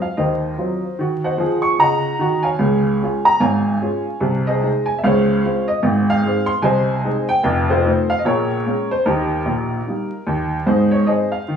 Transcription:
0.02 0.18 F5 medium
0.17 0.52 D#2 soft
0.17 0.53 D#3 medium
0.17 0.96 A#4 soft
0.17 0.95 C5 medium
0.17 0.99 D#5 medium
0.58 0.80 F#3 soft
0.58 0.81 C4 soft
0.58 0.80 F4 soft
0.99 1.31 D#3 medium
0.99 1.33 F#4 medium
1.24 1.62 C5 medium
1.24 1.62 D#5 medium
1.24 1.65 F#5 medium
1.38 1.71 F3 medium
1.38 1.73 G#4 medium
1.62 1.79 C#6 medium
1.79 2.12 C#3 medium
1.79 2.14 F4 medium
1.79 2.41 D#5 medium
1.79 2.41 F#5 medium
1.79 2.45 A#5 medium
2.19 2.52 D#3 medium
2.19 2.53 F#4 medium
2.43 3.22 C#5 medium
2.43 3.21 F5 medium
2.43 3.25 G#5 medium
2.59 2.94 C#2 medium
2.59 2.94 C#3 medium
3.02 3.24 G#3 soft
3.02 3.24 C#4 soft
3.02 3.25 F4 medium
3.25 3.42 A#5 medium
3.40 3.75 G#1 medium
3.40 3.75 G#2 medium
3.40 4.19 C#5 medium
3.40 4.19 F5 medium
3.40 4.22 G#5 medium
3.82 4.04 G#3 medium
3.82 4.04 C#4 medium
3.82 4.05 F4 medium
4.20 4.56 C2 medium
4.20 4.56 C3 medium
4.47 4.62 G#4 medium
4.47 4.85 C5 medium
4.47 4.87 D#5 medium
4.62 4.85 G#3 soft
4.62 4.85 D#4 soft
4.62 4.85 G#4 soft
4.86 4.97 G#5 medium
4.99 5.04 E5 medium
5.04 5.38 C#2 medium
5.04 5.38 C#3 medium
5.04 5.65 C5 medium
5.04 5.65 C#5 medium
5.04 5.68 F5 medium
5.44 5.67 G#3 medium
5.44 5.67 C4 soft
5.44 5.67 F4 soft
5.68 5.84 D#5 medium
5.83 6.18 G#1 medium
5.83 6.18 G#2 medium
6.10 6.50 F5 loud
6.25 6.47 G#3 medium
6.25 6.48 C4 medium
6.25 6.48 D#4 soft
6.46 6.64 C6 loud
6.62 6.98 C2 medium
6.62 6.98 C3 medium
6.62 7.25 C5 medium
6.62 7.25 D#5 medium
6.62 7.28 G#5 medium
7.04 7.27 G#3 medium
7.04 7.27 C4 soft
7.04 7.27 D#4 soft
7.29 7.45 G5 loud
7.43 7.79 F1 medium
7.43 7.79 F2 medium
7.70 8.08 F4 medium
7.70 8.08 A4 medium
7.70 8.10 C5 medium
7.85 8.08 A3 medium
7.85 8.08 C4 medium
7.85 8.09 D#4 medium
8.10 8.21 F5 medium
8.19 8.26 D#5 medium
8.25 8.60 A#1 medium
8.25 8.60 A#2 medium
8.25 8.88 G#4 medium
8.25 8.87 A#4 medium
8.25 8.91 C#5 medium
8.66 8.89 G#3 soft
8.66 8.89 A#3 medium
8.66 8.89 C#4 medium
8.91 9.07 C5 medium
9.06 9.39 D#2 medium
9.06 9.39 D#3 medium
9.06 9.86 D#4 medium
9.06 10.25 G4 medium
9.06 10.28 A#4 medium
9.45 9.79 A#1 medium
9.45 9.79 A#2 medium
9.87 10.10 G3 soft
9.87 10.10 A#3 soft
9.87 10.10 D#4 soft
10.27 10.60 D#2 medium
10.27 10.60 D#3 medium
10.67 11.02 G#2 medium
10.67 10.91 D#4 medium
10.67 10.91 G#4 medium
10.67 10.92 C5 medium
10.91 11.08 C#5 medium
11.06 11.29 G#3 soft
11.06 11.30 C4 soft
11.06 11.30 D#4 soft
11.06 11.31 G#4 medium
11.06 11.31 C5 medium
11.06 11.32 D#5 medium
11.32 11.56 F5 medium
11.48 11.56 D#3 medium

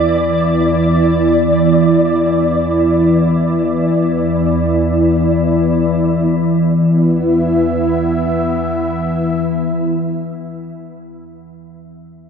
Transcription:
0.00 6.26 E2 medium
0.00 6.25 E3 medium
0.00 6.26 E3 medium
0.00 6.28 B3 medium
0.00 6.29 E4 medium
0.00 6.29 D5 medium
0.00 6.35 D5 medium
6.26 9.45 E2 medium
6.26 9.44 E3 medium
6.26 9.45 E3 medium
6.50 9.68 B3 medium
6.68 9.86 E4 medium
6.89 10.07 E5 medium

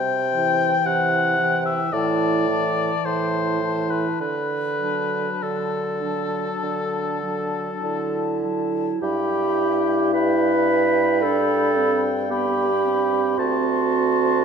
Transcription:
0.00 0.74 C3 medium
0.00 0.87 G5 medium
0.35 1.37 E3 medium
0.35 1.37 E4 medium
0.35 1.38 G5 soft
0.86 1.80 C3 medium
0.86 1.65 F#5 medium
1.39 1.92 E3 soft
1.39 1.92 E4 soft
1.39 1.92 G5 soft
1.66 1.94 E5 medium
1.92 2.92 A2 medium
1.92 2.48 E3 soft
1.92 2.47 E4 soft
1.92 3.07 D5 medium
1.92 2.48 A5 soft
2.48 3.60 E3 soft
2.48 3.60 E4 soft
2.48 3.61 A5 soft
3.05 4.07 A2 medium
3.05 3.92 C5 medium
3.62 4.20 E3 soft
3.62 4.20 E4 soft
3.62 4.20 A5 soft
3.91 4.21 B4 medium
4.20 5.28 D3 soft
4.20 5.45 B4 medium
4.81 6.01 F#3 soft
4.81 6.01 D4 soft
4.81 6.02 A5 soft
5.43 6.50 D3 soft
5.43 8.44 A4 soft
6.03 7.22 F#3 soft
6.03 7.21 D4 soft
6.03 7.22 A5 soft
6.63 7.69 D3 soft
7.23 8.41 F#3 soft
7.23 7.83 D4 soft
7.23 8.41 A5 soft
7.83 8.89 D3 soft
7.83 8.99 E4 soft
8.44 9.02 F#3 soft
8.44 9.02 A5 soft
9.02 13.34 G2 medium
9.02 11.26 E4 medium
9.02 10.11 G4 medium
9.02 10.10 G5 medium
9.02 10.10 B5 medium
10.13 11.24 B4 medium
10.13 12.27 G5 medium
10.13 12.03 B5 medium
11.22 11.78 D4 medium
11.22 12.13 A4 medium
11.77 12.32 C4 medium
12.30 12.68 B3 medium
12.30 13.40 G4 medium
12.30 13.37 G5 medium
12.30 13.40 B5 medium
12.84 14.45 C4 medium
13.38 14.45 D2 medium
13.38 14.45 F#4 medium
13.38 14.45 A5 medium
13.38 14.45 C6 medium

